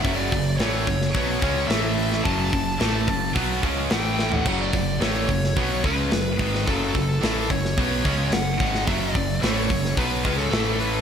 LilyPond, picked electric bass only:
\new Staff \with { instrumentName = "Picked electric bass" } { \clef bass \time 4/4 \key fis \minor \tempo 4 = 109 fis,,8 fis,,8 a,,8 fis,,8 b,,8 cis,8 a,,4 | fis,,8 fis,,8 a,,8 fis,,8 b,,8 cis,8 a,,4 | fis,,8 fis,,8 a,,8 fis,,8 b,,8 cis,8 fis,,8 gis,,8 | fis,,8 fis,,8 a,,8 fis,,8 b,,8 cis,8 fis,,8 gis,,8 |
fis,,8 fis,,8 a,,8 fis,,8 b,,8 cis,8 a,,4 | }